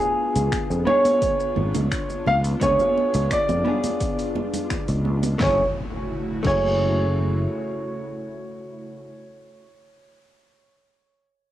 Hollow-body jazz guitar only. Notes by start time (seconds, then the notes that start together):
Already playing: B3 D4 F4 G#4
0.85 B3 D4 F4 G#4
2.60 B3 D4 F4 G#4
3.65 B3 D4 F4 G#4
5.38 A3 C#4 E4
5.43 G#4
6.43 A3 C#4 E4
6.48 G#4